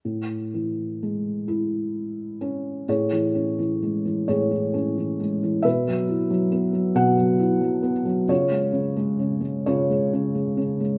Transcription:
<<
  \new Staff \with { instrumentName = "Felt piano" } { \time 6/8 \key a \major \tempo 4. = 44 << { r2. | cis''4. cis''4. | e''4 r8 fis''4 r8 | cis''4. cis''4. | } \\ { r2. | gis'4. gis'4. | b'4. r4. | eis'4. eis'4. | } >> }
  \new Staff \with { instrumentName = "Felt piano" } { \clef bass \time 6/8 \key a \major a,8 e8 gis8 e'4 cis'8 | a,16 e16 cis'16 e16 gis16 e16 a,16 e16 cis'16 e16 gis16 e16 | b,16 fis16 e'16 fis16 b16 fis16 b,16 fis16 e'16 fis16 b16 fis16 | cis16 gis16 cis16 gis16 cis16 gis16 cis16 gis16 cis16 gis16 cis16 gis16 | }
>>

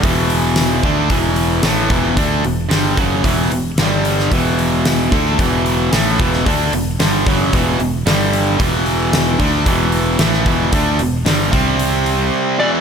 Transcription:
<<
  \new Staff \with { instrumentName = "Lead electric guitar" } { \time 4/4 \key e \minor \tempo 4 = 112 r1 | r1 | r1 | r1 |
r1 | r2. r8 d''8 | }
  \new Staff \with { instrumentName = "Distorted electric guitar" } { \clef bass \time 4/4 \key e \minor <e, b, e>4. <d a d'>8 <e, b, e>4 <a, e a>8 <e, b, e>8 | <d a d'>8 <e, b,>8 <g, d g>8 <fis, cis fis>8 <e, b, e>8 <e, b,>8 <g, d g>4 | <e, b, e>4. <d a d'>8 <e, b, e>4 <a, e a>8 <e, b, e>8 | <d a d'>8 <e, b,>8 <g, d g>8 <fis, cis fis>8 <e, b, e>8 <e, b,>8 <g, d g>4 |
<e, b, e>4. <d a d'>8 <e, b, e>4 <a, e a>8 <e, b, e>8 | <d a d'>8 <e, b,>8 <g, d g>8 <c g c'>2 <e, b, e>8 | }
  \new Staff \with { instrumentName = "Distorted electric guitar" } { \clef bass \time 4/4 \key e \minor <e, b, e>4. <d a d'>8 <e, b, e>4 <a, e a>8 <e, b, e>8 | <d a d'>8 <e, b,>8 <g, d g>8 <fis, cis fis>8 <e, b, e>8 <e, b,>8 <g, d g>4 | <e, b, e>4. <d a d'>8 <e, b, e>4 <a, e a>8 <e, b, e>8 | <d a d'>8 <e, b,>8 <g, d g>8 <fis, cis fis>8 <e, b, e>8 <e, b,>8 <g, d g>4 |
<e, b, e>4. <d a d'>8 <e, b, e>4 <a, e a>8 <e, b, e>8 | <d a d'>8 <e, b,>8 <g, d g>8 <c g c'>2 <e, b, e>8 | }
  \new Staff \with { instrumentName = "Picked electric bass" } { \clef bass \time 4/4 \key e \minor e,,4. d,8 e,,4 a,,8 e,,8 | d,8 e,,8 g,,8 fis,,8 e,,8 e,,8 g,,4 | e,,4. d,8 e,,4 a,,8 e,,8 | d,8 e,,8 g,,8 fis,,8 e,,8 e,,8 g,,4 |
e,,4. d,8 e,,4 a,,8 e,,8 | d,8 e,,8 g,,8 c,4. r4 | }
  \new DrumStaff \with { instrumentName = "Drums" } \drummode { \time 4/4 <hho bd>8 hho8 <hho sn>8 <hho bd>8 <hho bd>8 hho8 <hho sn>8 <hho bd>8 | <hho bd>8 hho8 <hho sn>8 <hho bd>8 <hho bd>8 hho8 <hho sn>8 hho16 sn16 | <hho bd>8 hho8 <hho sn>8 <hho bd>8 <hho bd>8 hho8 <hho sn>8 <hho bd>16 sn16 | <hho bd>8 hho8 <hho sn>8 <hho bd>8 <hho bd>8 hho8 <hho sn>8 hho8 |
<hho bd>8 hho8 <hho sn>8 <hho bd>8 <hho bd>8 hho8 <hho sn>16 sn16 <hho bd>8 | <hho bd>8 hho8 <hho sn>8 <hho bd>8 hho8 hho8 r4 | }
>>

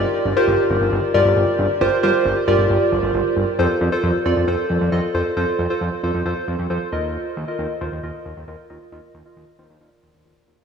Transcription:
<<
  \new Staff \with { instrumentName = "Synth keys" } { \time 4/4 \key f \mixolydian \tempo 4 = 135 <f' g' bes' d''>8 r16 <f' g' bes' c''>4~ <f' g' bes' c''>16 r8 <f' g' bes' d''>4~ <f' g' bes' d''>16 r16 | <f' g' bes' c''>8 <f' g' bes' c''>8. r16 <f' g' bes' d''>4. r4 | <f' a' c''>8 r16 <f' a' c''>8 r16 <f' a' d''>8 <f' a' c''>8. r16 <f' a' ees''>8 <f' a' c''>8 | <f' a' c''>8 r16 <f' a' c''>8 r16 <f' a' c''>8 <f' a' c''>8. r16 <f' a' c''>8 <f' bes' ees''>8~ |
<f' bes' ees''>8 r16 <f' bes' ees''>8 r16 <f' bes' c''>8 <f' bes' ees''>8. r16 <f' bes' ees''>8 <f' bes' ees''>8 | <f' bes' ees''>8 r16 <f' bes' ees''>8 r16 <f' bes' c''>8 <f' bes' d''>8. r16 <f' bes' d''>8 <f' bes' f''>8 | }
  \new Staff \with { instrumentName = "Analog synth bass" } { \clef bass \time 4/4 \key f \mixolydian r8 g,,16 r16 g,,16 r16 g,,16 g,,16 g,,16 r16 g,,16 g,,16 g,,16 r16 g,,16 r16 | g,,16 r16 g,,16 r16 g,,16 r16 g,,16 g,,16 g,,16 r16 g,,16 g,,16 g,,16 r16 g,,16 r16 | f,16 r16 f,16 r16 f,16 r16 f,16 f,16 f,16 r16 f,16 f,16 f,16 r16 f,16 r16 | f,16 r16 f,16 r16 f,16 r16 f,16 f,16 f,16 r16 f,16 f,16 f,16 r16 ees,8~ |
ees,16 r16 ees,16 r16 ees,16 r16 ees,16 ees,16 ees,16 r16 ees,16 ees,16 ees,16 r16 ees,16 r16 | ees,16 r16 ees,16 r16 ees,16 r16 ees,16 ees,16 ees,16 r16 ees,16 ees,16 ees,16 r16 ees,16 r16 | }
>>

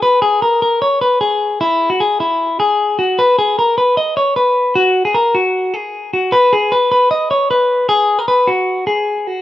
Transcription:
\new Staff \with { instrumentName = "Clean electric guitar" } { \time 4/4 \key fis \mixolydian \tempo 4 = 153 b'8 gis'8 ais'8 ais'8 cis''8 b'8 gis'4 | e'8. fis'16 gis'8 e'4 gis'4 fis'8 | b'8 gis'8 ais'8 b'8 dis''8 cis''8 b'4 | fis'8. gis'16 ais'8 fis'4 gis'4 fis'8 |
b'8 gis'8 b'8 b'8 dis''8 cis''8 b'4 | gis'8. ais'16 b'8 fis'4 gis'4 fis'8 | }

